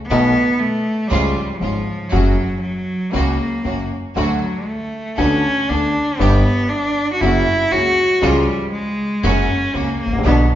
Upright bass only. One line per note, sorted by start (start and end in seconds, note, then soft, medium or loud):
0.10 0.31 B1 medium
1.11 1.32 C#2 medium
1.61 1.83 G#1 medium
2.12 2.34 F#1 medium
3.14 3.36 C#2 medium
3.65 3.86 F#1 medium
4.16 4.38 D2 medium
5.18 5.40 D2 medium
5.69 5.91 D2 medium
6.19 6.41 G1 medium
7.21 7.43 F#1 medium
7.71 7.93 C#2 medium
8.22 8.44 C#2 medium
9.23 9.45 F#1 medium
9.74 9.96 C#2 medium
10.06 10.11 G#1 medium
10.12 10.18 A1 medium
10.19 10.24 A#1 medium
10.25 10.44 B1 medium